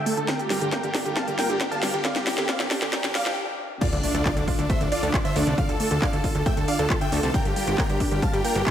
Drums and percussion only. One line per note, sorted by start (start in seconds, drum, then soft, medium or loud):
0.06 open hi-hat loud
0.17 closed hi-hat medium
0.28 kick loud
0.28 snare medium
0.28 closed hi-hat medium
0.39 closed hi-hat medium
0.50 snare medium
0.50 open hi-hat loud
0.61 closed hi-hat medium
0.72 kick loud
0.72 snare medium
0.72 closed hi-hat medium
0.83 closed hi-hat medium
0.94 kick medium
0.94 snare medium
0.94 open hi-hat loud
1.06 closed hi-hat medium
1.16 kick loud
1.16 snare medium
1.16 closed hi-hat medium
1.28 closed hi-hat medium
1.39 snare medium
1.39 open hi-hat loud
1.50 closed hi-hat medium
1.61 kick loud
1.61 snare medium
1.61 closed hi-hat medium
1.72 closed hi-hat medium
1.83 snare medium
1.83 open hi-hat loud
1.94 closed hi-hat medium
2.05 kick loud
2.05 snare medium
2.05 closed hi-hat medium
2.16 snare medium
2.16 closed hi-hat medium
2.27 snare medium
2.27 open hi-hat loud
2.38 snare medium
2.38 closed hi-hat medium
2.49 kick loud
2.49 snare medium
2.49 closed hi-hat medium
2.60 snare medium
2.60 closed hi-hat medium
2.71 kick medium
2.71 snare loud
2.71 open hi-hat loud
2.82 snare medium
2.82 closed hi-hat medium
2.93 kick loud
2.93 snare loud
2.93 closed hi-hat medium
3.04 snare medium
3.04 closed hi-hat soft
3.15 snare loud
3.15 open hi-hat loud
3.26 snare medium
3.26 closed hi-hat soft
3.81 kick loud
3.81 closed hi-hat medium
3.81 crash loud
3.92 closed hi-hat medium
4.03 open hi-hat loud
4.15 closed hi-hat medium
4.26 kick loud
4.26 clap loud
4.26 closed hi-hat medium
4.37 closed hi-hat medium
4.48 kick medium
4.48 open hi-hat loud
4.59 closed hi-hat medium
4.70 kick loud
4.70 closed hi-hat medium
4.81 closed hi-hat medium
4.92 open hi-hat loud
5.03 closed hi-hat medium
5.14 kick loud
5.14 clap loud
5.14 closed hi-hat medium
5.25 closed hi-hat medium
5.36 open hi-hat loud
5.47 closed hi-hat medium
5.58 kick loud
5.58 closed hi-hat medium
5.69 closed hi-hat medium
5.80 open hi-hat loud
5.91 closed hi-hat medium
6.02 kick loud
6.02 clap loud
6.02 closed hi-hat medium
6.13 closed hi-hat medium
6.24 kick medium
6.24 open hi-hat loud
6.35 closed hi-hat medium
6.46 kick loud
6.46 closed hi-hat medium
6.57 closed hi-hat medium
6.68 open hi-hat loud
6.79 closed hi-hat medium
6.90 kick loud
6.90 clap loud
6.90 closed hi-hat medium
7.01 closed hi-hat medium
7.12 open hi-hat loud
7.23 closed hi-hat medium
7.34 kick loud
7.34 closed hi-hat medium
7.45 closed hi-hat soft
7.56 open hi-hat loud
7.67 closed hi-hat medium
7.78 kick loud
7.78 clap loud
7.78 closed hi-hat medium
7.89 closed hi-hat medium
8.00 kick medium
8.00 open hi-hat loud
8.11 closed hi-hat medium
8.22 kick loud
8.22 closed hi-hat medium
8.34 closed hi-hat soft
8.45 open hi-hat loud
8.56 closed hi-hat medium
8.67 kick loud
8.67 clap loud
8.67 closed hi-hat medium